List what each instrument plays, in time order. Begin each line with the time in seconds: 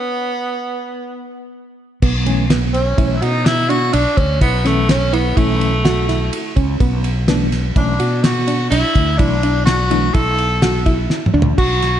Already playing: tenor saxophone B3
2.02 fretless electric bass B1, synth arpeggio sound B3, kick, crash
2.26 tine electric piano E3 A3 C#4, ride
2.50 synth arpeggio sound B3, snare, ride
2.73 tenor saxophone C#4, ride
2.98 fretless electric bass B1, tine electric piano E3 A3 C#4, synth arpeggio sound E4, kick, ride
3.16 tenor saxophone E4
3.21 fretless electric bass B2, tenor saxophone D#4, synth arpeggio sound F#4, ride
3.45 tenor saxophone E4, snare, ride
3.69 synth arpeggio sound D4, tenor saxophone F#4, ride
3.93 fretless electric bass B1, tenor saxophone D4, synth arpeggio sound D4, ride
4.17 fretless electric bass D2, tenor saxophone C#4, kick, ride
4.41 fretless electric bass B1, tenor saxophone B3, synth arpeggio sound E4, kick, ride
4.65 tine electric piano E3 A3 C#4, tenor saxophone A3, synth arpeggio sound C#4, snare, ride
4.89 tenor saxophone C#4, snare, ride
5.13 tenor saxophone B3, synth arpeggio sound E4, ride
5.36 fretless electric bass B1, tine electric piano E3 A3 C#4, tenor saxophone A3, synth arpeggio sound E4, kick, ride
5.61 ride
5.85 synth arpeggio sound F#4, snare, ride
6.09 synth arpeggio sound E4, snare, ride
6.33 ride
6.56 fretless electric bass C#2, synth arpeggio sound C#4, kick, ride
6.80 fretless electric bass B1, synth arpeggio sound B3, kick, ride
7.04 ride
7.28 tine electric piano E3 A3 D4, synth arpeggio sound B3, snare, ride
7.52 snare, ride
7.76 fretless electric bass B1, tine electric piano E3 A3 C#4, tenor saxophone D4, synth arpeggio sound E4, kick, ride
8.00 fretless electric bass B2, synth arpeggio sound F#4, ride
8.23 tenor saxophone F#4, snare, ride
8.47 synth arpeggio sound D4, ride
8.70 fretless electric bass B1, synth arpeggio sound D4, tenor saxophone E4, ride
8.95 fretless electric bass D2, kick, ride
9.17 fretless electric bass B1, tine electric piano E3 A3 D4, tenor saxophone D4, synth arpeggio sound E4, kick, ride
9.43 synth arpeggio sound D4, ride
9.65 tenor saxophone F#4, snare, ride
9.91 tine electric piano E3 A3 D4, synth arpeggio sound E4, ride
10.14 fretless electric bass B1, synth arpeggio sound E4, tenor saxophone A4, kick, ride
10.38 ride
10.62 synth arpeggio sound F#4, snare, ride
10.86 synth arpeggio sound E4, kick, ride
11.10 snare
11.26 mid tom
11.34 fretless electric bass D2, synth arpeggio sound D4
11.42 floor tom
11.58 fretless electric bass B1, synth arpeggio sound F#4, tenor saxophone F#4, kick, crash
11.82 snare, ride